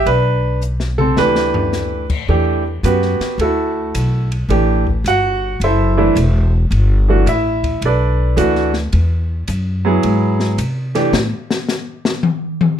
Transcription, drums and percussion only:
0.06 ride medium
0.61 hi-hat pedal medium
0.80 snare soft
0.99 mid tom medium
1.17 snare medium
1.36 snare medium
1.54 floor tom medium
1.73 snare medium
1.73 hi-hat pedal medium
2.10 kick medium
2.10 crash medium
2.84 hi-hat pedal medium
2.84 ride medium
3.02 snare soft
3.21 snare soft
3.21 ride soft
3.39 ride medium
3.95 hi-hat pedal medium
3.95 ride medium
4.32 ride soft
4.50 ride medium
4.87 kick medium
5.06 hi-hat pedal soft
5.06 ride medium
5.61 ride medium
6.16 hi-hat pedal medium
6.16 ride medium
6.72 ride medium
7.27 hi-hat pedal medium
7.27 ride medium
7.64 kick soft
7.64 ride soft
7.82 ride medium
8.38 hi-hat pedal medium
8.38 ride medium
8.55 snare soft
8.74 snare soft
8.93 ride medium
9.48 hi-hat pedal medium
9.48 ride medium
10.03 ride medium
10.40 snare medium
10.58 hi-hat pedal medium
10.58 ride medium
10.95 snare soft
10.95 ride soft
11.13 snare medium
11.51 snare medium
11.69 snare medium
11.69 hi-hat pedal medium
12.05 snare loud
12.23 high tom loud
12.61 high tom loud

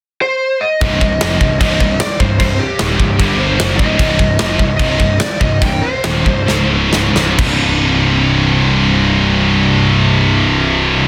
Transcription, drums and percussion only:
0.81 kick loud
0.81 crash medium
1.01 kick loud
1.21 snare loud
1.21 crash medium
1.41 kick medium
1.61 kick loud
1.61 crash medium
1.80 kick medium
2.00 snare loud
2.00 crash medium
2.20 kick medium
2.40 kick loud
2.40 crash medium
2.79 snare loud
2.79 crash medium
3.00 kick medium
3.20 kick loud
3.20 crash medium
3.60 snare loud
3.60 crash medium
3.79 kick loud
3.99 kick loud
3.99 crash medium
4.19 kick medium
4.39 snare loud
4.39 crash medium
4.59 kick medium
4.79 kick loud
4.79 crash medium
5.00 kick loud
5.20 snare loud
5.20 crash medium
5.41 kick loud
5.62 kick loud
5.62 crash medium
6.04 snare loud
6.04 crash medium
6.26 kick medium
6.48 snare medium
6.93 snare loud
7.16 snare medium
7.39 kick loud
7.39 crash loud

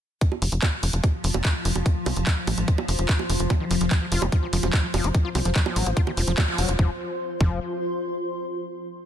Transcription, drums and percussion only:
0.21 kick loud
0.21 closed hi-hat medium
0.32 high bongo soft
0.42 open hi-hat loud
0.52 closed hi-hat medium
0.62 kick loud
0.62 clap loud
0.62 closed hi-hat medium
0.62 high bongo medium
0.83 open hi-hat medium
0.93 closed hi-hat medium
1.04 kick loud
1.04 closed hi-hat medium
1.04 high bongo soft
1.24 open hi-hat loud
1.34 closed hi-hat medium
1.34 high bongo medium
1.45 kick loud
1.45 clap loud
1.45 closed hi-hat medium
1.65 open hi-hat medium
1.76 closed hi-hat medium
1.76 high bongo soft
1.86 kick loud
1.86 closed hi-hat medium
2.06 open hi-hat loud
2.06 high bongo medium
2.17 closed hi-hat medium
2.27 kick loud
2.27 clap loud
2.27 closed hi-hat medium
2.47 open hi-hat medium
2.47 high bongo soft
2.58 closed hi-hat medium
2.68 kick loud
2.68 closed hi-hat medium
2.78 high bongo medium
2.88 open hi-hat loud
2.99 closed hi-hat medium
3.09 kick loud
3.09 clap loud
3.09 closed hi-hat medium
3.19 high bongo soft
3.30 open hi-hat medium
3.40 closed hi-hat medium
3.50 kick loud
3.50 closed hi-hat medium
3.50 high bongo medium
3.71 open hi-hat loud
3.81 closed hi-hat medium
3.91 kick loud
3.91 clap loud
3.91 closed hi-hat medium
3.91 high bongo soft
4.12 open hi-hat medium
4.22 closed hi-hat medium
4.22 high bongo medium
4.32 kick loud
4.32 closed hi-hat medium
4.53 open hi-hat loud
4.63 closed hi-hat medium
4.63 high bongo soft
4.73 kick loud
4.73 clap loud
4.73 closed hi-hat medium
4.94 open hi-hat loud
4.94 high bongo medium
5.04 closed hi-hat medium
5.15 kick loud
5.15 closed hi-hat medium
5.35 open hi-hat loud
5.35 high bongo soft
5.45 closed hi-hat medium
5.56 kick loud
5.56 clap loud
5.56 closed hi-hat medium
5.66 high bongo medium
5.76 open hi-hat loud
5.86 closed hi-hat medium
5.97 kick loud
5.97 closed hi-hat medium
6.07 high bongo soft
6.17 open hi-hat loud
6.28 closed hi-hat medium
6.38 kick loud
6.38 clap loud
6.38 closed hi-hat medium
6.38 high bongo medium
6.58 open hi-hat medium
6.69 closed hi-hat medium
6.79 kick loud
7.41 kick loud

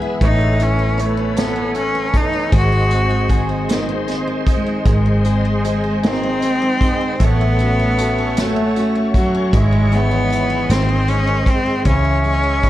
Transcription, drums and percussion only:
0.21 kick loud
0.21 closed hi-hat medium
0.59 closed hi-hat soft
0.99 closed hi-hat medium
1.37 snare loud
1.37 closed hi-hat medium
1.75 closed hi-hat soft
2.14 kick medium
2.14 closed hi-hat medium
2.52 kick loud
2.52 closed hi-hat medium
2.91 closed hi-hat soft
3.30 kick medium
3.30 closed hi-hat medium
3.69 snare loud
3.69 closed hi-hat loud
4.08 snare soft
4.08 closed hi-hat soft
4.47 kick medium
4.47 closed hi-hat medium
4.86 kick loud
4.86 closed hi-hat medium
5.25 closed hi-hat soft
5.65 closed hi-hat medium
6.03 snare loud
6.03 closed hi-hat loud
6.42 closed hi-hat soft
6.81 kick loud
6.81 closed hi-hat medium
7.19 kick loud
7.19 closed hi-hat medium
7.58 closed hi-hat soft
7.98 closed hi-hat medium
8.37 snare loud
8.37 closed hi-hat medium
8.76 closed hi-hat medium
9.14 kick medium
9.14 closed hi-hat medium
9.53 kick loud
9.53 closed hi-hat medium
9.93 closed hi-hat soft
10.32 closed hi-hat medium
10.70 snare loud
10.70 closed hi-hat loud
11.08 closed hi-hat medium
11.46 kick loud
11.46 closed hi-hat medium
11.85 kick loud
11.85 closed hi-hat medium
12.25 closed hi-hat soft
12.63 kick medium
12.63 closed hi-hat medium

